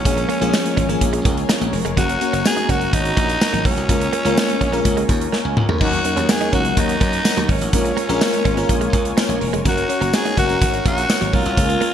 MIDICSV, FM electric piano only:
0, 0, Header, 1, 2, 480
1, 0, Start_track
1, 0, Key_signature, 6, "major"
1, 0, Tempo, 480000
1, 52, Time_signature, 4, 2, 24, 8
1, 11937, End_track
2, 0, Start_track
2, 0, Title_t, "FM electric piano"
2, 0, Program_c, 0, 5
2, 0, Control_c, 0, 64, 127
2, 47, Note_on_c, 0, 53, 74
2, 50, Note_on_c, 0, 56, 71
2, 53, Note_on_c, 0, 58, 70
2, 58, Note_on_c, 0, 61, 70
2, 58, Note_on_c, 0, 68, 84
2, 64, Control_c, 0, 64, 0
2, 243, Control_c, 0, 64, 127
2, 298, Note_off_c, 0, 53, 0
2, 299, Note_off_c, 0, 56, 0
2, 301, Note_off_c, 0, 58, 0
2, 303, Note_off_c, 0, 61, 0
2, 303, Note_off_c, 0, 68, 0
2, 410, Note_on_c, 0, 53, 92
2, 411, Note_on_c, 0, 56, 84
2, 413, Note_on_c, 0, 58, 85
2, 416, Note_on_c, 0, 61, 92
2, 418, Note_on_c, 0, 68, 105
2, 742, Note_off_c, 0, 53, 0
2, 742, Note_off_c, 0, 56, 0
2, 743, Note_off_c, 0, 58, 0
2, 745, Note_off_c, 0, 61, 0
2, 746, Note_off_c, 0, 68, 0
2, 887, Note_on_c, 0, 53, 89
2, 890, Note_on_c, 0, 56, 82
2, 892, Note_on_c, 0, 58, 86
2, 896, Note_on_c, 0, 61, 81
2, 899, Note_on_c, 0, 68, 99
2, 1551, Note_off_c, 0, 53, 0
2, 1552, Note_off_c, 0, 56, 0
2, 1553, Note_off_c, 0, 58, 0
2, 1555, Note_off_c, 0, 61, 0
2, 1557, Note_off_c, 0, 68, 0
2, 1967, Note_on_c, 0, 58, 74
2, 1972, Note_on_c, 0, 61, 70
2, 1980, Note_on_c, 0, 66, 79
2, 1984, Control_c, 0, 64, 0
2, 2135, Note_off_c, 0, 58, 0
2, 2138, Note_off_c, 0, 61, 0
2, 2141, Note_off_c, 0, 66, 0
2, 2189, Control_c, 0, 64, 127
2, 2211, Note_on_c, 0, 58, 76
2, 2218, Note_on_c, 0, 61, 71
2, 2224, Note_on_c, 0, 66, 90
2, 2542, Note_off_c, 0, 58, 0
2, 2545, Note_off_c, 0, 61, 0
2, 2548, Note_off_c, 0, 66, 0
2, 2688, Note_on_c, 0, 58, 81
2, 2693, Note_on_c, 0, 61, 71
2, 2698, Note_on_c, 0, 66, 92
2, 3351, Note_off_c, 0, 58, 0
2, 3354, Note_off_c, 0, 61, 0
2, 3356, Note_off_c, 0, 66, 0
2, 3888, Note_on_c, 0, 56, 74
2, 3892, Note_on_c, 0, 58, 65
2, 3894, Note_on_c, 0, 61, 67
2, 3897, Note_on_c, 0, 65, 71
2, 3901, Note_on_c, 0, 70, 86
2, 3905, Control_c, 0, 64, 0
2, 4056, Control_c, 0, 64, 127
2, 4138, Note_off_c, 0, 56, 0
2, 4140, Note_off_c, 0, 58, 0
2, 4141, Note_off_c, 0, 61, 0
2, 4142, Note_off_c, 0, 65, 0
2, 4144, Note_off_c, 0, 70, 0
2, 4248, Note_on_c, 0, 56, 92
2, 4251, Note_on_c, 0, 58, 84
2, 4252, Note_on_c, 0, 61, 86
2, 4256, Note_on_c, 0, 65, 87
2, 4258, Note_on_c, 0, 70, 106
2, 4581, Note_off_c, 0, 56, 0
2, 4582, Note_off_c, 0, 58, 0
2, 4583, Note_off_c, 0, 61, 0
2, 4585, Note_off_c, 0, 65, 0
2, 4586, Note_off_c, 0, 70, 0
2, 4728, Note_on_c, 0, 56, 90
2, 4731, Note_on_c, 0, 58, 83
2, 4732, Note_on_c, 0, 61, 80
2, 4736, Note_on_c, 0, 65, 86
2, 4738, Note_on_c, 0, 70, 103
2, 5336, Note_on_c, 0, 80, 72
2, 5391, Note_off_c, 0, 56, 0
2, 5393, Note_off_c, 0, 58, 0
2, 5394, Note_off_c, 0, 61, 0
2, 5396, Note_off_c, 0, 65, 0
2, 5396, Note_off_c, 0, 70, 0
2, 5780, Note_off_c, 0, 80, 0
2, 5809, Note_on_c, 0, 54, 71
2, 5813, Note_on_c, 0, 58, 69
2, 5815, Note_on_c, 0, 61, 66
2, 5817, Note_on_c, 0, 63, 64
2, 5822, Note_on_c, 0, 70, 85
2, 5825, Control_c, 0, 64, 0
2, 5976, Note_off_c, 0, 54, 0
2, 5978, Note_off_c, 0, 58, 0
2, 5979, Note_off_c, 0, 61, 0
2, 5980, Note_off_c, 0, 63, 0
2, 5982, Note_off_c, 0, 70, 0
2, 6019, Control_c, 0, 64, 127
2, 6044, Note_on_c, 0, 54, 74
2, 6048, Note_on_c, 0, 58, 67
2, 6051, Note_on_c, 0, 61, 68
2, 6054, Note_on_c, 0, 63, 69
2, 6057, Note_on_c, 0, 70, 80
2, 6378, Note_off_c, 0, 54, 0
2, 6381, Note_off_c, 0, 58, 0
2, 6382, Note_off_c, 0, 61, 0
2, 6384, Note_off_c, 0, 63, 0
2, 6385, Note_off_c, 0, 70, 0
2, 6525, Note_on_c, 0, 54, 79
2, 6528, Note_on_c, 0, 58, 75
2, 6532, Note_on_c, 0, 61, 70
2, 6533, Note_on_c, 0, 63, 68
2, 6537, Note_on_c, 0, 70, 85
2, 7190, Note_off_c, 0, 54, 0
2, 7192, Note_off_c, 0, 58, 0
2, 7193, Note_off_c, 0, 61, 0
2, 7194, Note_off_c, 0, 63, 0
2, 7196, Note_off_c, 0, 70, 0
2, 7730, Note_on_c, 0, 56, 77
2, 7732, Note_on_c, 0, 58, 70
2, 7734, Note_on_c, 0, 61, 69
2, 7736, Note_on_c, 0, 65, 71
2, 7740, Note_on_c, 0, 70, 84
2, 7744, Control_c, 0, 64, 0
2, 7918, Control_c, 0, 64, 127
2, 7979, Note_off_c, 0, 56, 0
2, 7980, Note_off_c, 0, 58, 0
2, 7981, Note_off_c, 0, 61, 0
2, 7982, Note_off_c, 0, 65, 0
2, 7984, Note_off_c, 0, 70, 0
2, 8086, Note_on_c, 0, 56, 99
2, 8088, Note_on_c, 0, 58, 89
2, 8092, Note_on_c, 0, 61, 92
2, 8097, Note_on_c, 0, 65, 89
2, 8098, Note_on_c, 0, 70, 110
2, 8420, Note_off_c, 0, 56, 0
2, 8420, Note_off_c, 0, 58, 0
2, 8423, Note_off_c, 0, 61, 0
2, 8425, Note_off_c, 0, 65, 0
2, 8426, Note_off_c, 0, 70, 0
2, 8567, Note_on_c, 0, 56, 88
2, 8571, Note_on_c, 0, 58, 81
2, 8573, Note_on_c, 0, 61, 83
2, 8577, Note_on_c, 0, 65, 83
2, 8580, Note_on_c, 0, 70, 107
2, 9231, Note_off_c, 0, 56, 0
2, 9233, Note_off_c, 0, 58, 0
2, 9234, Note_off_c, 0, 61, 0
2, 9236, Note_off_c, 0, 65, 0
2, 9237, Note_off_c, 0, 70, 0
2, 9646, Note_on_c, 0, 61, 78
2, 9652, Note_on_c, 0, 66, 73
2, 9660, Note_on_c, 0, 70, 85
2, 9666, Control_c, 0, 64, 0
2, 9814, Note_off_c, 0, 61, 0
2, 9817, Note_off_c, 0, 66, 0
2, 9821, Note_off_c, 0, 70, 0
2, 9841, Control_c, 0, 64, 127
2, 9884, Note_on_c, 0, 61, 76
2, 9890, Note_on_c, 0, 66, 73
2, 9896, Note_on_c, 0, 73, 88
2, 10219, Note_off_c, 0, 61, 0
2, 10222, Note_off_c, 0, 66, 0
2, 10225, Note_off_c, 0, 73, 0
2, 10371, Note_on_c, 0, 61, 78
2, 10376, Note_on_c, 0, 66, 77
2, 10383, Note_on_c, 0, 70, 86
2, 11033, Note_off_c, 0, 61, 0
2, 11036, Note_off_c, 0, 66, 0
2, 11039, Note_off_c, 0, 70, 0
2, 11571, Note_on_c, 0, 56, 79
2, 11575, Note_on_c, 0, 58, 69
2, 11578, Note_on_c, 0, 61, 67
2, 11581, Note_on_c, 0, 65, 70
2, 11583, Note_on_c, 0, 70, 82
2, 11586, Control_c, 0, 64, 0
2, 11730, Control_c, 0, 64, 127
2, 11819, Note_off_c, 0, 56, 0
2, 11822, Note_off_c, 0, 58, 0
2, 11823, Note_off_c, 0, 61, 0
2, 11825, Note_off_c, 0, 65, 0
2, 11826, Note_off_c, 0, 70, 0
2, 11937, End_track
0, 0, End_of_file